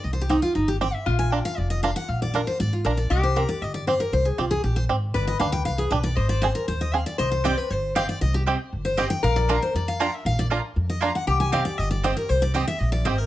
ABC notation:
X:1
M:4/4
L:1/8
Q:1/4=235
K:Cm
V:1 name="Steel-string acoustic guitar"
(3e c G E F E G g =e | f a g f d e f ^f | f d B c d F B d | e c B d e d c B |
c A F A G c z2 | d e f g f A =B d | e d c B c e f d | e c d =B c2 f d |
e G z3 c e g | f d B c d f g =e | f d z3 e f ^f | g a f d e d c B |
c d e =e _e d c B |]
V:2 name="Mandolin"
z8 | z8 | z8 | z8 |
z8 | z8 | z8 | z2 [CGeg] z3 [CGeg] z |
z2 [CGeg] z3 [CGeg] z | z2 [B,Fdb] z3 [B,Fdb] z | z2 [B,Fdb] z3 [B,Fdb] z | z2 [CGeg] z3 [CGeg] z |
z2 [CGeg] z3 [CGeg] z |]
V:3 name="Resonator guitar played with a steel bar"
E8 | F8- | F6- F z | G8- |
G8 | =B8 | c6- c z | c8- |
c8 | B8- | B6- B z | G8- |
G8 |]
V:4 name="Five-string banjo"
z2 [CG] z3 [CG] z | z2 [DFB] z3 [DFB] z | z2 [DFB] z3 [DFB] z | z2 [CG] z3 [CG] z |
z2 [CG] z3 [CG] z | z2 [DG] z3 [DG] z | z2 [CA] z3 [CA] z | z2 [CG] z3 [CG] z |
z2 [CG] z3 [CG] z | z2 [DFB] z3 [DFB] z | z2 [DFB] z3 [DFB] z | z2 [CG] z3 [CG] z |
z2 [CG] z3 [CG] z |]
V:5 name="Upright bass" clef=bass
C,,4 G,,,4 | B,,,4 F,,,4 | B,,,4 A,,,2 B,,,2 | C,,4 G,,,4 |
C,,2 C,,2 B,,,2 A,,,2 | G,,,2 D,,2 C,,2 =B,,,2 | A,,,4 E,,4 | C,,4 G,,,4 |
C,,4 G,,,4 | B,,,4 F,,4 | B,,,4 F,,4 | C,,4 G,,,4 |
C,,4 B,,,2 A,,,2 |]